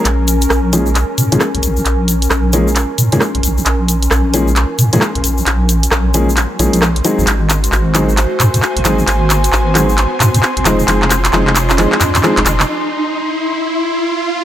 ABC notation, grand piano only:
X:1
M:4/4
L:1/16
Q:"Swing 16ths" 1/4=133
K:Bbm
V:1 name="Grand piano"
z6 [F,A,B,DA] z4 [F,A,B,DA] z4 | z6 [F,A,B,DA] z4 [F,A,B,DA] z4 | z6 [F,A,B,DA] z4 [F,A,B,DA] z4 | z6 [F,A,B,DA] z3 [F,A,B,DA]2 z2 [G,A,CEA]2 |
z6 [G,A,CEA] z6 z [G,A,CEA] z | z6 [G,A,CEA] z6 z [F,A,CEA] z | [F,A,CEA] z3 [F,A,CEA] z3 [F,A,CEA] z3 [F,A,CEA] z3 | z16 |]